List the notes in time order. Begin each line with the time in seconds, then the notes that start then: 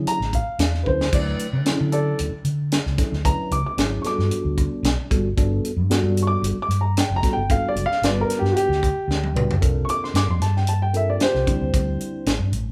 Already playing: F#3 C#4 D4 E4 G#4
0.06 A#5, muted fingered electric bass stroke, closed hi-hat
0.20 A1, snare
0.33 F5, kick, closed hi-hat
0.59 E2, snare, closed hi-hat
0.75 snare
0.84 D2 F#3 C#4 D4 E4 B4 C5, kick
0.88 A4
1.01 snare
1.12 D2 F#3 A3 D4 E4 B4 D5, kick, closed hi-hat, crash
1.39 closed hi-hat
1.53 D3
1.65 F#3 C#4 D4 E4 A4, snare, closed hi-hat
1.81 D3
1.92 A4 D5, closed hi-hat
2.19 D2, closed hi-hat
2.33 muted fingered electric bass stroke
2.45 D3, closed hi-hat
2.72 snare, closed hi-hat
2.86 C#2, snare
2.98 F#3 C#4 D4 E4 A4, kick, snare, closed hi-hat
3.12 D2, snare
3.24 F#3 C#4 D4 E4 B4 A#5, kick, closed hi-hat
3.51 C#2 D6, closed hi-hat
3.65 D6, muted fingered electric bass stroke
3.77 G#1 F#3 C#4 D4 E4 G#4, snare, closed hi-hat
4.02 G3 B3 D4 F#4 A4 C#6, muted fingered electric bass stroke, snare, closed hi-hat
4.07 D6
4.19 G2, snare
4.31 muted fingered electric bass stroke, closed hi-hat
4.45 D2
4.58 kick, closed hi-hat
4.83 B1, snare, closed hi-hat
5.10 G1 G3 B3 D4 F#4 A4, kick, closed hi-hat
5.37 G1 G3 B3 D4 F#4 A4, kick, closed hi-hat
5.63 muted fingered electric bass stroke, closed hi-hat
5.76 G2
5.90 G3 B3 D4 F#4 A4, snare, closed hi-hat
6.03 G2
6.17 closed hi-hat
6.22 C#6
6.27 D6
6.42 G1, closed hi-hat
6.62 D6
6.69 G2, closed hi-hat
6.81 A#5
6.97 G5, snare, closed hi-hat
7.10 F#1
7.16 A#5
7.22 G3 B3 D4 F#4 A4, kick, snare, closed hi-hat
7.33 G1 G5
7.50 G3 B3 D4 F#4 A4 F5, kick, closed hi-hat
7.69 D5
7.75 F#1, closed hi-hat
7.86 F5, muted fingered electric bass stroke
7.92 snare
8.02 G1 G3 B3 D4 F#4 B4 D5, snare, closed hi-hat
8.21 A#4
8.30 snare, closed hi-hat
8.39 G2 G4
8.45 snare
8.52 F#4, muted fingered electric bass stroke
8.56 G4, closed hi-hat
8.69 D2, snare
8.83 kick, closed hi-hat
9.08 D2, snare
9.24 high tom
9.34 C#2 G3 B3 D4 F#4 B4, mid tom
9.51 floor tom
9.61 C2 C4 D4 F4 A4 A#4, kick, closed hi-hat
9.85 C#6, closed hi-hat
9.90 D6
10.04 C6, snare
10.14 G2 D6, snare, closed hi-hat
10.28 F2 C6
10.40 G2 A5, snare, closed hi-hat
10.57 G5, snare
10.67 A5, closed hi-hat
10.82 G5
10.93 C4 D4 F4 A4 A#4 E5, closed hi-hat
11.10 D5
11.20 G4 C5, snare, closed hi-hat
11.34 C2, snare
11.46 D2 G3 C4 D4 E4 C5, kick, closed hi-hat
11.61 D2
11.74 D2, kick, closed hi-hat
12.01 closed hi-hat
12.26 A1, snare, closed hi-hat
12.39 G2
12.52 A1, closed hi-hat